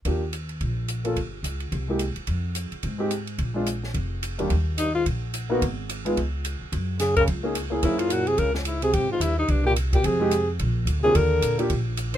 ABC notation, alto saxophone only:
X:1
M:4/4
L:1/8
Q:"Swing" 1/4=216
K:Eb
V:1 name="Alto saxophone"
z8 | z8 | z8 | z8 |
z2 E F z4 | z8 | z2 A B z4 | _F =F _G A B _D _F A |
G F _F E D G z G | A3 z4 A | B3 z4 z |]